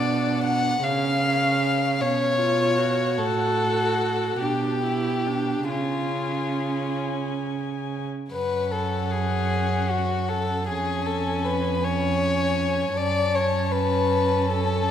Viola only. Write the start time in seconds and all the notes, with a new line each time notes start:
Already playing: D4
0.84 C#4
2.02 C#4
2.39 F4
2.78 F#4
4.41 D4
4.84 E4
5.27 D4
5.70 C#4
8.32 C#4
10.69 C#4
11.84 C#4
12.97 C#4